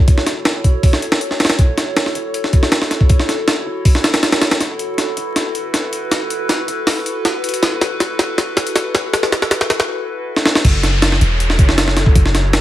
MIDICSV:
0, 0, Header, 1, 5, 480
1, 0, Start_track
1, 0, Key_signature, 3, "minor"
1, 0, Tempo, 377358
1, 102, Time_signature, 4, 2, 24, 8
1, 16039, End_track
2, 0, Start_track
2, 0, Title_t, "Ambient pad"
2, 0, Program_c, 0, 92
2, 0, Note_on_c, 0, 64, 78
2, 0, Note_on_c, 0, 66, 73
2, 0, Note_on_c, 0, 69, 73
2, 0, Note_on_c, 0, 73, 86
2, 5810, Note_off_c, 0, 73, 0
2, 5864, Note_on_c, 0, 71, 91
2, 13490, Note_off_c, 0, 64, 0
2, 13490, Note_off_c, 0, 66, 0
2, 13491, Note_off_c, 0, 69, 0
2, 13492, Note_off_c, 0, 71, 0
2, 13537, Note_on_c, 0, 73, 94
2, 13539, Note_on_c, 0, 64, 85
2, 13539, Note_on_c, 0, 66, 77
2, 13539, Note_on_c, 0, 69, 78
2, 16039, Note_off_c, 0, 64, 0
2, 16039, Note_off_c, 0, 66, 0
2, 16039, Note_off_c, 0, 69, 0
2, 16039, Note_off_c, 0, 73, 0
2, 16039, End_track
3, 0, Start_track
3, 0, Title_t, "808-style bass"
3, 0, Program_c, 1, 38
3, 98, Note_on_c, 1, 30, 97
3, 801, Note_off_c, 1, 30, 0
3, 819, Note_on_c, 1, 28, 100
3, 1282, Note_off_c, 1, 28, 0
3, 2018, Note_on_c, 1, 30, 98
3, 2721, Note_off_c, 1, 30, 0
3, 2741, Note_on_c, 1, 28, 100
3, 3203, Note_off_c, 1, 28, 0
3, 3938, Note_on_c, 1, 30, 95
3, 4641, Note_off_c, 1, 30, 0
3, 4661, Note_on_c, 1, 28, 104
3, 5140, Note_on_c, 1, 37, 82
3, 5159, Note_off_c, 1, 28, 0
3, 5842, Note_off_c, 1, 37, 0
3, 5860, Note_on_c, 1, 30, 101
3, 6562, Note_off_c, 1, 30, 0
3, 6578, Note_on_c, 1, 28, 104
3, 7059, Note_on_c, 1, 30, 94
3, 7078, Note_off_c, 1, 28, 0
3, 7762, Note_off_c, 1, 30, 0
3, 7778, Note_on_c, 1, 30, 99
3, 8481, Note_off_c, 1, 30, 0
3, 8501, Note_on_c, 1, 28, 102
3, 8963, Note_off_c, 1, 28, 0
3, 9700, Note_on_c, 1, 30, 100
3, 10402, Note_off_c, 1, 30, 0
3, 10420, Note_on_c, 1, 28, 104
3, 10882, Note_off_c, 1, 28, 0
3, 11619, Note_on_c, 1, 30, 100
3, 12322, Note_off_c, 1, 30, 0
3, 12342, Note_on_c, 1, 28, 106
3, 12582, Note_off_c, 1, 28, 0
3, 13539, Note_on_c, 1, 30, 95
3, 14242, Note_off_c, 1, 30, 0
3, 14262, Note_on_c, 1, 28, 103
3, 14740, Note_on_c, 1, 30, 94
3, 14759, Note_off_c, 1, 28, 0
3, 15442, Note_off_c, 1, 30, 0
3, 15461, Note_on_c, 1, 30, 95
3, 16039, Note_off_c, 1, 30, 0
3, 16039, End_track
4, 0, Start_track
4, 0, Title_t, "Downlifter"
4, 0, Program_c, 2, 103
4, 13543, Note_on_c, 2, 60, 76
4, 16039, Note_off_c, 2, 60, 0
4, 16039, End_track
5, 0, Start_track
5, 0, Title_t, "Drums"
5, 97, Note_on_c, 9, 42, 83
5, 98, Note_on_c, 9, 36, 105
5, 223, Note_on_c, 9, 38, 46
5, 224, Note_off_c, 9, 42, 0
5, 226, Note_off_c, 9, 36, 0
5, 337, Note_off_c, 9, 38, 0
5, 337, Note_on_c, 9, 38, 48
5, 337, Note_on_c, 9, 42, 69
5, 464, Note_off_c, 9, 38, 0
5, 464, Note_off_c, 9, 42, 0
5, 576, Note_on_c, 9, 38, 110
5, 576, Note_on_c, 9, 42, 84
5, 703, Note_off_c, 9, 38, 0
5, 703, Note_off_c, 9, 42, 0
5, 819, Note_on_c, 9, 36, 92
5, 819, Note_on_c, 9, 42, 65
5, 946, Note_off_c, 9, 36, 0
5, 947, Note_off_c, 9, 42, 0
5, 1060, Note_on_c, 9, 36, 105
5, 1060, Note_on_c, 9, 46, 76
5, 1186, Note_on_c, 9, 38, 53
5, 1187, Note_off_c, 9, 36, 0
5, 1187, Note_off_c, 9, 46, 0
5, 1303, Note_on_c, 9, 42, 65
5, 1313, Note_off_c, 9, 38, 0
5, 1424, Note_on_c, 9, 38, 117
5, 1430, Note_off_c, 9, 42, 0
5, 1540, Note_on_c, 9, 42, 78
5, 1551, Note_off_c, 9, 38, 0
5, 1664, Note_on_c, 9, 38, 41
5, 1667, Note_off_c, 9, 42, 0
5, 1781, Note_off_c, 9, 38, 0
5, 1781, Note_on_c, 9, 38, 88
5, 1781, Note_on_c, 9, 42, 66
5, 1841, Note_off_c, 9, 38, 0
5, 1841, Note_off_c, 9, 42, 0
5, 1841, Note_on_c, 9, 38, 84
5, 1841, Note_on_c, 9, 42, 67
5, 1901, Note_off_c, 9, 38, 0
5, 1901, Note_off_c, 9, 42, 0
5, 1901, Note_on_c, 9, 38, 101
5, 1901, Note_on_c, 9, 42, 81
5, 2017, Note_off_c, 9, 42, 0
5, 2017, Note_on_c, 9, 42, 84
5, 2019, Note_on_c, 9, 36, 104
5, 2028, Note_off_c, 9, 38, 0
5, 2144, Note_off_c, 9, 42, 0
5, 2147, Note_off_c, 9, 36, 0
5, 2257, Note_on_c, 9, 38, 50
5, 2257, Note_on_c, 9, 42, 69
5, 2384, Note_off_c, 9, 38, 0
5, 2384, Note_off_c, 9, 42, 0
5, 2499, Note_on_c, 9, 38, 114
5, 2499, Note_on_c, 9, 42, 84
5, 2623, Note_off_c, 9, 38, 0
5, 2623, Note_on_c, 9, 38, 44
5, 2626, Note_off_c, 9, 42, 0
5, 2738, Note_on_c, 9, 42, 67
5, 2750, Note_off_c, 9, 38, 0
5, 2865, Note_off_c, 9, 42, 0
5, 2979, Note_on_c, 9, 42, 85
5, 3106, Note_off_c, 9, 42, 0
5, 3106, Note_on_c, 9, 38, 43
5, 3219, Note_on_c, 9, 42, 67
5, 3220, Note_on_c, 9, 36, 93
5, 3233, Note_off_c, 9, 38, 0
5, 3343, Note_on_c, 9, 38, 53
5, 3346, Note_off_c, 9, 42, 0
5, 3348, Note_off_c, 9, 36, 0
5, 3458, Note_off_c, 9, 38, 0
5, 3458, Note_on_c, 9, 38, 111
5, 3458, Note_on_c, 9, 42, 84
5, 3583, Note_off_c, 9, 38, 0
5, 3583, Note_on_c, 9, 38, 54
5, 3585, Note_off_c, 9, 42, 0
5, 3701, Note_off_c, 9, 38, 0
5, 3701, Note_on_c, 9, 38, 47
5, 3701, Note_on_c, 9, 42, 65
5, 3824, Note_on_c, 9, 36, 92
5, 3828, Note_off_c, 9, 38, 0
5, 3828, Note_off_c, 9, 42, 0
5, 3936, Note_on_c, 9, 42, 85
5, 3940, Note_off_c, 9, 36, 0
5, 3940, Note_on_c, 9, 36, 108
5, 4064, Note_off_c, 9, 42, 0
5, 4064, Note_on_c, 9, 38, 47
5, 4067, Note_off_c, 9, 36, 0
5, 4183, Note_off_c, 9, 38, 0
5, 4183, Note_on_c, 9, 38, 50
5, 4183, Note_on_c, 9, 42, 66
5, 4310, Note_off_c, 9, 38, 0
5, 4310, Note_off_c, 9, 42, 0
5, 4421, Note_on_c, 9, 38, 112
5, 4421, Note_on_c, 9, 42, 87
5, 4548, Note_off_c, 9, 38, 0
5, 4548, Note_off_c, 9, 42, 0
5, 4899, Note_on_c, 9, 46, 75
5, 4900, Note_on_c, 9, 36, 107
5, 5024, Note_on_c, 9, 38, 54
5, 5027, Note_off_c, 9, 36, 0
5, 5027, Note_off_c, 9, 46, 0
5, 5140, Note_off_c, 9, 38, 0
5, 5140, Note_on_c, 9, 38, 102
5, 5140, Note_on_c, 9, 42, 79
5, 5263, Note_off_c, 9, 38, 0
5, 5263, Note_off_c, 9, 42, 0
5, 5263, Note_on_c, 9, 38, 102
5, 5263, Note_on_c, 9, 42, 82
5, 5379, Note_off_c, 9, 38, 0
5, 5379, Note_off_c, 9, 42, 0
5, 5379, Note_on_c, 9, 38, 105
5, 5379, Note_on_c, 9, 42, 80
5, 5501, Note_off_c, 9, 38, 0
5, 5501, Note_off_c, 9, 42, 0
5, 5501, Note_on_c, 9, 38, 105
5, 5501, Note_on_c, 9, 42, 77
5, 5617, Note_off_c, 9, 38, 0
5, 5617, Note_off_c, 9, 42, 0
5, 5617, Note_on_c, 9, 38, 104
5, 5617, Note_on_c, 9, 42, 78
5, 5742, Note_off_c, 9, 38, 0
5, 5742, Note_off_c, 9, 42, 0
5, 5742, Note_on_c, 9, 38, 103
5, 5742, Note_on_c, 9, 42, 81
5, 5858, Note_off_c, 9, 38, 0
5, 5858, Note_off_c, 9, 42, 0
5, 5858, Note_on_c, 9, 38, 48
5, 5858, Note_on_c, 9, 42, 84
5, 5986, Note_off_c, 9, 38, 0
5, 5986, Note_off_c, 9, 42, 0
5, 6097, Note_on_c, 9, 42, 65
5, 6225, Note_off_c, 9, 42, 0
5, 6336, Note_on_c, 9, 38, 50
5, 6336, Note_on_c, 9, 42, 88
5, 6463, Note_off_c, 9, 38, 0
5, 6463, Note_off_c, 9, 42, 0
5, 6575, Note_on_c, 9, 42, 67
5, 6702, Note_off_c, 9, 42, 0
5, 6817, Note_on_c, 9, 38, 52
5, 6817, Note_on_c, 9, 42, 84
5, 6944, Note_off_c, 9, 38, 0
5, 6944, Note_off_c, 9, 42, 0
5, 7058, Note_on_c, 9, 42, 60
5, 7185, Note_off_c, 9, 42, 0
5, 7299, Note_on_c, 9, 38, 55
5, 7299, Note_on_c, 9, 42, 82
5, 7426, Note_off_c, 9, 38, 0
5, 7426, Note_off_c, 9, 42, 0
5, 7540, Note_on_c, 9, 42, 70
5, 7667, Note_off_c, 9, 42, 0
5, 7779, Note_on_c, 9, 38, 57
5, 7779, Note_on_c, 9, 42, 88
5, 7906, Note_off_c, 9, 38, 0
5, 7906, Note_off_c, 9, 42, 0
5, 8019, Note_on_c, 9, 42, 69
5, 8146, Note_off_c, 9, 42, 0
5, 8259, Note_on_c, 9, 38, 61
5, 8259, Note_on_c, 9, 42, 88
5, 8386, Note_off_c, 9, 38, 0
5, 8386, Note_off_c, 9, 42, 0
5, 8499, Note_on_c, 9, 42, 69
5, 8626, Note_off_c, 9, 42, 0
5, 8737, Note_on_c, 9, 38, 64
5, 8737, Note_on_c, 9, 46, 83
5, 8864, Note_off_c, 9, 38, 0
5, 8864, Note_off_c, 9, 46, 0
5, 8980, Note_on_c, 9, 42, 69
5, 9108, Note_off_c, 9, 42, 0
5, 9221, Note_on_c, 9, 38, 69
5, 9221, Note_on_c, 9, 42, 78
5, 9348, Note_off_c, 9, 38, 0
5, 9348, Note_off_c, 9, 42, 0
5, 9461, Note_on_c, 9, 42, 69
5, 9523, Note_off_c, 9, 42, 0
5, 9523, Note_on_c, 9, 42, 69
5, 9587, Note_off_c, 9, 42, 0
5, 9587, Note_on_c, 9, 42, 82
5, 9701, Note_off_c, 9, 42, 0
5, 9701, Note_on_c, 9, 38, 72
5, 9701, Note_on_c, 9, 42, 87
5, 9828, Note_off_c, 9, 38, 0
5, 9828, Note_off_c, 9, 42, 0
5, 9940, Note_on_c, 9, 38, 78
5, 9940, Note_on_c, 9, 42, 68
5, 10068, Note_off_c, 9, 38, 0
5, 10068, Note_off_c, 9, 42, 0
5, 10181, Note_on_c, 9, 38, 79
5, 10181, Note_on_c, 9, 42, 86
5, 10308, Note_off_c, 9, 38, 0
5, 10308, Note_off_c, 9, 42, 0
5, 10420, Note_on_c, 9, 38, 79
5, 10420, Note_on_c, 9, 42, 78
5, 10547, Note_off_c, 9, 38, 0
5, 10547, Note_off_c, 9, 42, 0
5, 10660, Note_on_c, 9, 38, 80
5, 10660, Note_on_c, 9, 42, 88
5, 10788, Note_off_c, 9, 38, 0
5, 10788, Note_off_c, 9, 42, 0
5, 10898, Note_on_c, 9, 38, 85
5, 10898, Note_on_c, 9, 42, 80
5, 11023, Note_off_c, 9, 42, 0
5, 11023, Note_on_c, 9, 42, 83
5, 11026, Note_off_c, 9, 38, 0
5, 11136, Note_off_c, 9, 42, 0
5, 11136, Note_on_c, 9, 38, 87
5, 11136, Note_on_c, 9, 42, 89
5, 11263, Note_off_c, 9, 38, 0
5, 11263, Note_off_c, 9, 42, 0
5, 11378, Note_on_c, 9, 38, 91
5, 11378, Note_on_c, 9, 42, 70
5, 11505, Note_off_c, 9, 38, 0
5, 11505, Note_off_c, 9, 42, 0
5, 11618, Note_on_c, 9, 38, 91
5, 11618, Note_on_c, 9, 42, 88
5, 11741, Note_off_c, 9, 38, 0
5, 11741, Note_on_c, 9, 38, 82
5, 11746, Note_off_c, 9, 42, 0
5, 11860, Note_off_c, 9, 38, 0
5, 11860, Note_on_c, 9, 38, 98
5, 11860, Note_on_c, 9, 42, 70
5, 11985, Note_off_c, 9, 38, 0
5, 11985, Note_on_c, 9, 38, 86
5, 11987, Note_off_c, 9, 42, 0
5, 12098, Note_off_c, 9, 38, 0
5, 12098, Note_on_c, 9, 38, 96
5, 12098, Note_on_c, 9, 42, 87
5, 12224, Note_off_c, 9, 38, 0
5, 12224, Note_on_c, 9, 38, 87
5, 12225, Note_off_c, 9, 42, 0
5, 12339, Note_off_c, 9, 38, 0
5, 12339, Note_on_c, 9, 38, 97
5, 12339, Note_on_c, 9, 42, 79
5, 12462, Note_off_c, 9, 38, 0
5, 12462, Note_on_c, 9, 38, 92
5, 12466, Note_off_c, 9, 42, 0
5, 12589, Note_off_c, 9, 38, 0
5, 13184, Note_on_c, 9, 38, 52
5, 13299, Note_off_c, 9, 38, 0
5, 13299, Note_on_c, 9, 38, 80
5, 13424, Note_off_c, 9, 38, 0
5, 13424, Note_on_c, 9, 38, 82
5, 13541, Note_on_c, 9, 36, 114
5, 13541, Note_on_c, 9, 42, 86
5, 13541, Note_on_c, 9, 49, 90
5, 13552, Note_off_c, 9, 38, 0
5, 13668, Note_off_c, 9, 36, 0
5, 13669, Note_off_c, 9, 42, 0
5, 13669, Note_off_c, 9, 49, 0
5, 13780, Note_on_c, 9, 38, 51
5, 13780, Note_on_c, 9, 42, 68
5, 13908, Note_off_c, 9, 38, 0
5, 13908, Note_off_c, 9, 42, 0
5, 14020, Note_on_c, 9, 38, 113
5, 14020, Note_on_c, 9, 42, 90
5, 14147, Note_off_c, 9, 38, 0
5, 14147, Note_off_c, 9, 42, 0
5, 14148, Note_on_c, 9, 38, 45
5, 14263, Note_on_c, 9, 42, 68
5, 14275, Note_off_c, 9, 38, 0
5, 14390, Note_off_c, 9, 42, 0
5, 14503, Note_on_c, 9, 42, 85
5, 14627, Note_on_c, 9, 38, 44
5, 14631, Note_off_c, 9, 42, 0
5, 14741, Note_on_c, 9, 36, 95
5, 14741, Note_on_c, 9, 42, 69
5, 14754, Note_off_c, 9, 38, 0
5, 14867, Note_on_c, 9, 38, 53
5, 14868, Note_off_c, 9, 42, 0
5, 14869, Note_off_c, 9, 36, 0
5, 14983, Note_off_c, 9, 38, 0
5, 14983, Note_on_c, 9, 38, 120
5, 14983, Note_on_c, 9, 42, 85
5, 15108, Note_off_c, 9, 38, 0
5, 15108, Note_on_c, 9, 38, 56
5, 15110, Note_off_c, 9, 42, 0
5, 15221, Note_off_c, 9, 38, 0
5, 15221, Note_on_c, 9, 38, 51
5, 15221, Note_on_c, 9, 42, 71
5, 15345, Note_on_c, 9, 36, 100
5, 15348, Note_off_c, 9, 38, 0
5, 15348, Note_off_c, 9, 42, 0
5, 15461, Note_off_c, 9, 36, 0
5, 15461, Note_on_c, 9, 36, 111
5, 15461, Note_on_c, 9, 42, 85
5, 15588, Note_off_c, 9, 36, 0
5, 15588, Note_off_c, 9, 42, 0
5, 15589, Note_on_c, 9, 38, 48
5, 15703, Note_off_c, 9, 38, 0
5, 15703, Note_on_c, 9, 38, 51
5, 15703, Note_on_c, 9, 42, 70
5, 15831, Note_off_c, 9, 38, 0
5, 15831, Note_off_c, 9, 42, 0
5, 15942, Note_on_c, 9, 38, 120
5, 15942, Note_on_c, 9, 42, 86
5, 16039, Note_off_c, 9, 38, 0
5, 16039, Note_off_c, 9, 42, 0
5, 16039, End_track
0, 0, End_of_file